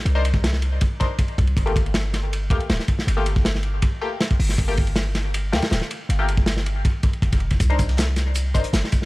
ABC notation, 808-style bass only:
X:1
M:4/4
L:1/8
Q:1/4=159
K:Gphr
V:1 name="808-style bass" clef=bass
C,,4 z3 C,, | G,,,4- G,,, D,, D,,, z | G,,,4 z3 G,,, | G,,,4- G,,, D,, D,,, z |
G,,,4 z2 F,,,2 | C,,4- C,, G,,, G,,, z |]